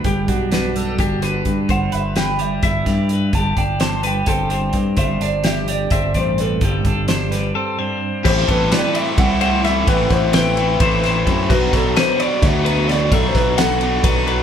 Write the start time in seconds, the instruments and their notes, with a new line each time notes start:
Already playing: clean electric guitar G3 B4
0.04 fingered electric bass G1, clean electric guitar G2 G4, kick, closed hi-hat
0.28 fingered electric bass B1, clean electric guitar D4 F#4, kick, closed hi-hat
0.52 clean electric guitar D4 F#4 B4, snare, closed hi-hat
0.76 clean electric guitar G3 A4, closed hi-hat
0.99 fingered electric bass G1, clean electric guitar D4 G4, kick, closed hi-hat
1.22 clean electric guitar D3 B4, closed hi-hat
1.45 fingered electric bass G2, kick, closed hi-hat
1.69 fingered electric bass G1, clean electric guitar G2 C5 F#5, kick, closed hi-hat
1.92 fingered electric bass G1, clean electric guitar B4 E5, closed hi-hat
2.16 clean electric guitar G4 B4 G5, snare, closed hi-hat
2.39 clean electric guitar G3 E5, closed hi-hat
2.63 fingered electric bass G1, clean electric guitar E4 E5, kick, snare, closed hi-hat
2.86 clean electric guitar G2 D5, fingered electric bass G2, kick, snare, closed hi-hat
3.09 clean electric guitar B4, closed hi-hat
3.33 fingered electric bass G1, clean electric guitar G2 G4 A5, kick, closed hi-hat
3.57 fingered electric bass G1, clean electric guitar D4 G5, kick, closed hi-hat
3.80 clean electric guitar G4 C5 A5, snare, closed hi-hat
4.03 clean electric guitar G3 B4 G5, closed hi-hat
4.26 fingered electric bass G1, clean electric guitar C4 A4 G5, kick, closed hi-hat
4.50 clean electric guitar G2 C5, closed hi-hat
4.73 fingered electric bass G2, kick, closed hi-hat
4.97 fingered electric bass G1, clean electric guitar G2 C5 E5, kick, closed hi-hat
5.21 fingered electric bass G1, clean electric guitar D4 D5, closed hi-hat
5.44 clean electric guitar G4 E5, snare, closed hi-hat
5.68 clean electric guitar G3 D5, closed hi-hat
5.91 fingered electric bass G1, clean electric guitar C4 E5, kick, closed hi-hat
6.14 fingered electric bass A1, clean electric guitar G2 C5 D5, kick, closed hi-hat
6.38 clean electric guitar A4 B4, closed hi-hat
6.61 fingered electric bass G1, clean electric guitar G2 G4 A4, kick, closed hi-hat
6.85 fingered electric bass G1, clean electric guitar D4, kick, closed hi-hat
7.08 clean electric guitar D4 C5, snare, closed hi-hat
7.31 clean electric guitar G3 B4, snare, closed hi-hat
7.55 clean electric guitar C4 A4
7.79 clean electric guitar G2 C5
8.24 fingered electric bass A1, overdriven electric guitar A2 E3 A3 C4 E4, clean electric guitar G4 C5, kick, crash
8.47 fingered electric bass A1, overdriven electric guitar A3 C4 E4, clean electric guitar A4 B4, kick, ride
8.71 clean electric guitar B4 D5, snare, ride
8.94 overdriven electric guitar A3 C4 E4, clean electric guitar D5 E5, ride
9.18 fingered electric bass C2, overdriven electric guitar A2 E3 A3 C4 E4, clean electric guitar F#5, kick, ride
9.40 overdriven electric guitar A3 C4 E4, clean electric guitar C5 F#5, ride
9.64 overdriven electric guitar E3 A3 C4 E4, clean electric guitar E5, snare, ride
9.86 fingered electric bass A1, overdriven electric guitar A2 E3 A3 C4 E4, clean electric guitar B4 F#5, kick, ride
10.10 fingered electric bass A1, overdriven electric guitar A3 C4 E4, clean electric guitar C5, kick, snare, ride
10.33 clean electric guitar B4 G5, snare, ride
10.56 overdriven electric guitar A3 C4 E4, ride
10.80 fingered electric bass A1, overdriven electric guitar A2 E3 A3 C4 E4, clean electric guitar C5, kick, ride
11.03 overdriven electric guitar A3 C4 E4, clean electric guitar C5, snare, ride
11.26 fingered electric bass F#2, overdriven electric guitar E3 A3 C4 E4, kick, ride
11.49 fingered electric bass B1, overdriven electric guitar B2 F#3 B3 D4 F#4, clean electric guitar F#4 B4, kick, crash
11.71 fingered electric bass B1, overdriven electric guitar B3 D4 F#4, clean electric guitar A4, kick, snare, ride
11.96 clean electric guitar B4 C5, snare, ride
12.19 overdriven electric guitar B3 D4 F#4, clean electric guitar D5, ride
12.41 fingered electric bass D2, overdriven electric guitar B2 F#3 B3 D4 F#4, clean electric guitar E5, kick, snare, ride
12.64 overdriven electric guitar B3 D4 F#4, clean electric guitar B4, ride
12.88 overdriven electric guitar F#3 B3 D4 F#4, clean electric guitar D5, snare, ride
13.11 fingered electric bass B1, overdriven electric guitar B2 F#3 B3 D4 F#4, clean electric guitar A4 E5, kick, ride
13.29 clean electric guitar C5
13.35 fingered electric bass B1, overdriven electric guitar B3 D4 F#4, clean electric guitar B4, kick, snare, ride
13.58 clean electric guitar A4 F#5, snare, ride
13.81 overdriven electric guitar B3 D4 F#4, ride
14.03 fingered electric bass B1, overdriven electric guitar B2 F#3 B3 D4 F#4, clean electric guitar B4, kick, ride
14.27 overdriven electric guitar B3 D4 F#4, clean electric guitar B4, ride